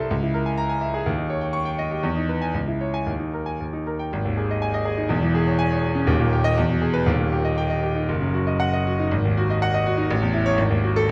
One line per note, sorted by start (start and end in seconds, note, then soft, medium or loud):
0.00 0.12 C2 medium
0.00 0.12 E4 medium
0.00 0.10 A4 medium
0.00 0.12 C5 medium
0.00 0.12 E5 medium
0.00 0.12 A5 medium
0.00 0.12 C6 medium
0.11 1.03 C#2 medium
0.23 0.41 E4 medium
0.34 0.53 A#4 medium
0.46 0.65 G#5 medium
0.58 0.77 A#5 medium
0.69 0.88 G#5 medium
0.81 1.00 E5 medium
0.94 1.06 G#4 medium
1.06 2.01 D#2 medium
1.18 1.37 D#4 medium
1.30 1.49 C#5 medium
1.41 1.61 G5 medium
1.53 1.73 C#6 medium
1.65 1.85 G5 medium
1.79 1.98 D#5 medium
1.91 2.03 G4 medium
2.03 2.53 E2 medium
2.16 2.36 D#4 medium
2.29 2.50 B4 medium
2.42 2.55 G#5 medium
2.54 3.05 C#2 medium
2.68 2.89 E4 soft
2.81 3.02 C#5 medium
2.94 3.07 G#5 medium
3.06 3.58 D#2 medium
3.19 3.41 D#4 soft
3.33 3.55 A#4 soft
3.46 3.60 G#5 medium
3.60 4.11 D#2 soft
3.73 3.95 D#4 soft
3.87 4.08 A#4 soft
3.99 4.12 G5 medium
4.13 5.08 G#1 medium
4.25 4.45 D#2 medium
4.37 4.57 G#4 medium
4.51 4.70 D#5 medium
4.62 4.82 G#5 medium
4.74 4.93 D#5 medium
4.85 5.05 G#4 medium
4.98 5.10 D#4 medium
5.09 6.05 E1 medium
5.09 6.05 E2 medium
5.23 5.42 E3 medium
5.35 5.54 G#4 medium
5.47 5.67 C#5 medium
5.59 5.79 G#5 medium
5.71 5.91 C#5 medium
5.83 6.03 G#4 medium
5.95 6.08 C#4 medium
6.06 6.55 D#1 medium
6.06 6.55 D#2 medium
6.19 6.40 A#2 medium
6.33 6.53 G4 medium
6.44 6.57 D#5 loud
6.58 7.06 E2 medium
6.69 6.90 B2 medium
6.82 7.02 G#4 medium
6.94 7.07 B4 medium
7.06 8.05 D#1 medium
7.06 8.06 D#2 medium
7.20 7.40 A#2 medium
7.33 7.53 G4 medium
7.45 7.65 D#5 medium
7.58 7.78 G5 medium
7.70 7.91 D#5 medium
7.83 8.04 G4 medium
7.96 8.09 D#4 medium
8.09 9.08 F#1 medium
8.21 8.42 F#2 medium
8.34 8.55 F#4 medium
8.47 8.68 D#5 medium
8.60 8.80 F#5 medium
8.73 8.94 D#5 medium
8.87 9.07 F#4 medium
8.99 9.12 D#4 medium
9.11 10.06 G#1 medium
9.25 9.44 D#2 medium
9.37 9.56 F#4 medium
9.50 9.69 D#5 medium
9.62 9.81 F#5 loud
9.74 9.93 D#5 medium
9.86 10.05 F#4 medium
9.98 10.09 D#4 medium
10.11 10.57 A1 loud
10.22 10.41 E2 medium
10.34 10.53 E4 medium
10.46 10.58 C#5 loud
10.58 11.07 G#1 medium
10.70 10.90 D#2 medium
10.84 11.03 F#4 medium
10.96 11.09 A4 loud